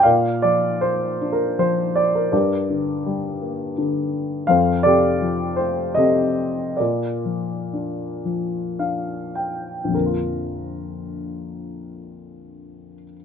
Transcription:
0.03 A#2 A#4 D5 F5
0.42 F3 D5
0.81 A#3 C5
1.21 D4
1.33 A#4
1.59 F3 C5
1.96 D5
2.15 A#4
2.32 G2 G4 A#4 D5
2.70 D3
3.06 G3
3.42 A#3
3.78 D3
4.47 F2 A4 C5 F5
4.83 C3 G4 A4 D5
5.21 F3
5.56 A3 C5
5.95 C3 G4 A4 D#5
6.77 A#2 F4 A#4 D5
7.25 F3
7.73 D4
8.25 F3
8.79 D4 F5
9.35 G5
9.84 A#1
9.89 F2
9.93 D3 A#4
9.98 F3
10.02 A#3
10.06 F4

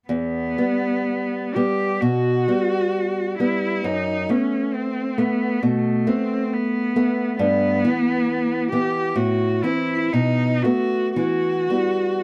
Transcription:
0.08 E2 B3
0.58 G3 B3
1.54 G3 B3 G4
2.01 B2 F#4
2.48 G3 B3
3.39 G3 B3 E4
3.84 F#2 D#4
4.29 A3 B3 C#4
4.73 C4
5.17 A3 B3
5.62 B2 A3
6.07 A3 B3 C4
6.53 B3
6.96 A3 B3
7.39 G2 B3
7.85 E3 B3
8.72 E3 B3 G4
9.16 A2 F#4
9.63 E3 C4 E4
10.12 B2 D#4
10.62 A3 B3 F#4
11.16 E3 F#4
11.70 G3 B3

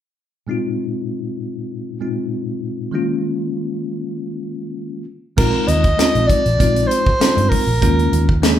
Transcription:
0.47 A#2 G#3 C4 D#4
0.51 F4
2.00 A#2 G#3 C4 D#4 F4
2.91 D#3 G#3 A#3 C#4 F4
5.37 A#1 G#3 C4 D#4 F4 A#4, kick, crash
5.68 D#2 D#5, closed hi-hat
5.84 kick, closed hi-hat
5.97 G#3 C4 D#4 F4, snare, closed hi-hat
6.15 A#1, closed hi-hat
6.27 D5, kick, closed hi-hat
6.46 A#1, closed hi-hat
6.59 A#1 G#3 C4 D#4 F4, kick, closed hi-hat
6.76 closed hi-hat
6.87 C5, closed hi-hat
7.07 kick
7.20 G#3 C4 D#4 F4, snare, closed hi-hat
7.37 G2, closed hi-hat
7.49 A#4, muted fingered electric bass stroke, kick, open hi-hat
7.67 A#1
7.81 D#2 G#3 A#3 C#4 F4, kick, closed hi-hat
7.99 closed hi-hat
8.12 D#2, closed hi-hat
8.29 kick
8.42 G#3 A#3 C#4 G#4, snare, closed hi-hat

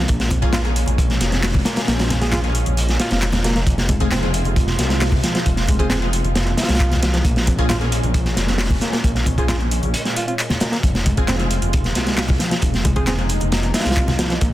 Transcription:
Already playing: G#3
0.08 A#1 A#2 A#3 C#4, kick, closed hi-hat
0.20 snare, closed hi-hat
0.31 C4, kick, closed hi-hat, high conga
0.42 A#3 C#4 F4 G#4, kick, closed hi-hat
0.53 F4, snare, clap, closed hi-hat, low conga
0.64 A#3 C#4 F4 G#4, closed hi-hat
0.76 closed hi-hat
0.86 A#1, closed hi-hat, high conga
0.98 kick, closed hi-hat
1.10 snare, closed hi-hat
1.21 F1, snare, closed hi-hat
1.32 C4, snare, closed hi-hat
1.43 snare, clap, closed hi-hat, open hi-hat
1.54 kick, closed hi-hat, high conga
1.65 A#3, snare, closed hi-hat
1.76 A#3, snare, closed hi-hat
1.88 A#1 A#3, snare, closed hi-hat
1.99 snare, closed hi-hat
2.10 C4, snare, closed hi-hat, high conga
2.21 F4 G#4, snare, closed hi-hat
2.32 F4 G#4, snare, clap, closed hi-hat, low conga
2.43 A#3 C#4 F4 G#4, closed hi-hat
2.55 closed hi-hat
2.66 A#1, closed hi-hat, high conga
2.77 closed hi-hat
2.89 snare, closed hi-hat
3.00 F4, snare, closed hi-hat
3.11 F1 C4 F4, snare, closed hi-hat
3.22 snare, clap, closed hi-hat
3.32 snare, closed hi-hat, high conga
3.44 A#3, snare, closed hi-hat
3.55 A#3, snare, closed hi-hat
3.67 F1 C3 F3 F4, kick, closed hi-hat
3.78 snare, closed hi-hat
3.89 G#3, kick, closed hi-hat, high conga
4.00 G#3 C4 F4 G#4, kick, closed hi-hat
4.11 C4, snare, clap, closed hi-hat, low conga
4.22 G#3 C4 F4 G#4, closed hi-hat
4.34 closed hi-hat
4.45 F1, closed hi-hat, high conga
4.56 kick, closed hi-hat
4.67 snare, closed hi-hat
4.79 C2, snare, closed hi-hat
4.90 G#3, snare, closed hi-hat
5.01 snare, clap, closed hi-hat, open hi-hat
5.12 kick, closed hi-hat, high conga
5.23 F3, snare, closed hi-hat
5.35 F3, snare, closed hi-hat
5.46 F1 F3, kick, closed hi-hat
5.57 snare, closed hi-hat
5.67 G#3, kick, closed hi-hat, high conga
5.79 G#3 C4 F4 G#4 C5, kick, closed hi-hat
5.90 C4 G#4, snare, clap, closed hi-hat, low conga
6.02 G#3 C4 F4 G#4, closed hi-hat
6.13 closed hi-hat
6.24 F1, closed hi-hat, high conga
6.35 snare, closed hi-hat
6.47 closed hi-hat
6.57 F4, snare, closed hi-hat
6.63 snare, closed hi-hat
6.69 C2 G#3, snare, closed hi-hat
6.75 snare, closed hi-hat
6.80 kick, clap, closed hi-hat
6.91 snare, closed hi-hat, high conga
7.03 F3, snare, closed hi-hat
7.13 F3, snare, closed hi-hat
7.25 A#1 A#2 G#3 A#3 C#4, kick, closed hi-hat
7.36 snare, closed hi-hat
7.47 C4, kick, closed hi-hat, high conga
7.58 A#3 C#4 F4 G#4, kick, closed hi-hat
7.69 F4, snare, clap, closed hi-hat, low conga
7.81 A#3 C#4 F4 G#4, closed hi-hat
7.92 closed hi-hat
8.03 A#1, closed hi-hat, high conga
8.14 kick, closed hi-hat
8.25 snare, closed hi-hat
8.37 F1, snare, closed hi-hat
8.48 C4, snare, closed hi-hat
8.58 snare, clap, closed hi-hat, open hi-hat
8.70 kick, closed hi-hat, high conga
8.81 A#3, snare, closed hi-hat
8.93 A#3, snare, closed hi-hat
9.04 A#1 A#3, kick, closed hi-hat
9.15 snare, closed hi-hat
9.26 C4, kick, closed hi-hat, high conga
9.38 A#3 C#4 F4 G#4 C5, kick, closed hi-hat
9.48 F4 G#4, snare, clap, closed hi-hat, low conga
9.61 closed hi-hat
9.71 closed hi-hat
9.83 A#1, closed hi-hat, high conga
9.94 closed hi-hat
10.05 snare, closed hi-hat
10.16 F4, closed hi-hat
10.27 C4 F4, closed hi-hat
10.39 clap, closed hi-hat
10.50 snare, closed hi-hat, high conga
10.60 A#3, snare, closed hi-hat
10.72 A#3, snare, closed hi-hat
10.83 F1 C3 F3 F4, kick, closed hi-hat
10.95 snare, closed hi-hat
11.06 G#3, kick, closed hi-hat, high conga
11.17 G#3 C4 F4 G#4, kick, closed hi-hat
11.28 C4, snare, clap, closed hi-hat, low conga
11.39 G#3 C4 F4 G#4, closed hi-hat
11.50 closed hi-hat
11.62 F1, closed hi-hat, high conga
11.73 kick, closed hi-hat
11.84 snare, closed hi-hat
11.95 C2, snare, closed hi-hat
12.07 G#3, snare, closed hi-hat
12.18 snare, clap, closed hi-hat, open hi-hat
12.28 kick, closed hi-hat, high conga
12.39 F3, snare, closed hi-hat
12.51 F3, snare, closed hi-hat
12.62 F1 F3 D#4, kick, closed hi-hat
12.74 snare, closed hi-hat
12.84 G#3, kick, closed hi-hat, high conga
12.96 G#3 C4 F4 G#4 C5, kick, closed hi-hat
13.07 C4 G#4, snare, clap, closed hi-hat, low conga
13.18 G#3 C4 F4 G#4, closed hi-hat
13.29 closed hi-hat
13.40 F1, closed hi-hat, high conga
13.52 snare, closed hi-hat
13.63 closed hi-hat
13.74 F4, snare, closed hi-hat
13.79 snare, closed hi-hat
13.85 C2 G#3, snare, closed hi-hat
13.91 snare, closed hi-hat
13.96 kick, clap, closed hi-hat
14.08 snare, closed hi-hat, high conga
14.19 F3, snare, closed hi-hat
14.30 F3, snare, closed hi-hat
14.41 A#1 A#2 G#3 A#3 C#4, kick, closed hi-hat

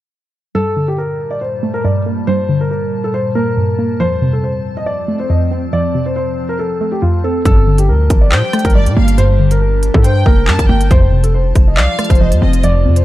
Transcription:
0.55 G2 A#2 G3 A4 A5
0.77 D3
0.88 G4
0.98 A#4
1.31 D5
1.41 C5
1.63 A3
1.74 A#4
1.84 G2 D5
2.06 A#3
2.27 G2 C5
2.49 D3
2.61 A#4
2.71 A#4
3.04 A4
3.14 C5
3.35 A#3 A#4
3.57 G2
3.79 A#3
4.00 F2 F3 C4 C5
4.22 C3
4.33 A4
4.44 C5
4.77 D#5
4.86 D5
5.08 A3
5.20 C5
5.30 F2 D#5
5.51 C4
5.73 F2 D5
5.95 C3
6.06 C5
6.16 C5
6.49 A#4
6.59 A4
6.81 A3
6.92 G4
7.02 F2 F4
7.24 C4 A4
7.45 G1 G2 G3 D4 G4 A4 A5, kick, closed hi-hat
7.67 D3
7.78 G4, closed hi-hat
7.89 D2 A#4
8.10 G1, kick, closed hi-hat
8.21 D5
8.32 A#2 C5 G5, clap
8.53 A3, cross-stick, closed hi-hat
8.59 closed hi-hat
8.64 G1 A#4, kick, closed hi-hat
8.70 closed hi-hat
8.75 G2 D5
8.86 A#2, closed hi-hat
8.96 G1 A#3 F5
9.08 closed hi-hat
9.18 G2 C5, closed hi-hat
9.40 D3
9.51 A#4, closed hi-hat
9.62 A#4
9.83 closed hi-hat
9.94 G2 A4, kick
10.04 C5 G5, closed hi-hat
10.26 F1 A#3 A#4, kick
10.48 G2 A5, clap
10.59 G1, kick, closed hi-hat
10.69 G1 A#3 G5
10.81 closed hi-hat
10.91 F1 F2 F3 F4 C5, kick, closed hi-hat
11.12 C3
11.24 A4, closed hi-hat
11.34 C5
11.55 F1, kick, closed hi-hat
11.68 D#5
11.77 C2 D5 F5, clap
11.99 A3, cross-stick, closed hi-hat
12.04 closed hi-hat
12.10 F1 C5, kick, closed hi-hat
12.15 closed hi-hat
12.20 F2 C5 D#5
12.32 F2, closed hi-hat
12.42 F1 C4 D#5
12.53 closed hi-hat
12.63 F2 D5, closed hi-hat
12.85 F2 C3
12.96 C5, closed hi-hat

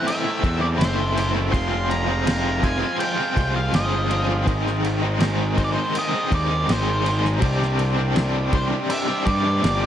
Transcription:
Already playing: E3 A3 C4 E4 A4 C5 E5
0.07 E5, crash
0.24 A3 C4 E4
0.43 E2 E3 A3 C4 E4, kick, crash
0.61 A3 C4 E4 D5
0.78 F#1 A2 E3 A3 C4 E4 C5, crash
0.82 snare
1.16 E3 A3 C4 E4, crash
1.35 A3 C4 E4
1.52 F1 F3 G#3 C4 F4 G#4 F5 C6, kick, crash
1.69 G#3 C4 F4
1.90 A#5, crash
2.07 G#3 C4 F4
2.26 F3 G#3 C4 F4, snare, crash
2.62 F3 G#3 C4 F4 G#5, kick, crash
2.80 G#3 C4 F4
3.00 G5, crash
3.17 G#3 C4 F4
3.35 C2 F3 G#3 C4 F4, kick, crash
3.54 G#3 C4 F4 F5
3.72 G1 F3 G#3 C4 F4 D#5, snare, crash
4.10 F3 G#3 C4 F4, crash
4.28 G#3 C4 F4
4.46 G#1 G#2 D#3 G#3 C4 D#4, kick, crash
4.65 G#3 C4 D#4, snare
4.85 crash
5.02 G#3 C4 D#4
5.19 G#2 D#3 G#3 C4 D#4, snare, crash
5.56 D#3 G#3 C4 D#4 C5, kick, crash
5.64 D5
5.73 C4 D#4 C5
5.77 G#3
5.95 D#5, crash
6.13 G#3 C4 D#4
6.31 D#2 D#3 G#3 C4 D#4 D5, kick, crash
6.49 G#3 C4 D#4
6.67 G#1 G#2 D#3 G#3 C4 D#4, snare, crash
6.73 C5
7.04 D#3 G#3 C4 D#4, crash
7.22 G#3 C4 D#4, snare
7.39 C2 C3 G3 C4 D4, kick, crash
7.44 D4 G4 D5
7.58 G3 C4 D4
7.62 snare
7.79 crash
7.97 G3 C4 D4
8.15 C3 G3 C4 D4, snare, crash
8.52 C3 G3 C4 D4 C5, kick, crash
8.70 G3 C4 D4
8.90 E5, crash
9.07 G3 C4 D4
9.26 G2 C3 G3 C4 D4 D5, kick, crash
9.44 G3 C4 D4
9.62 G1 C3 G3 C4 D4, snare, crash

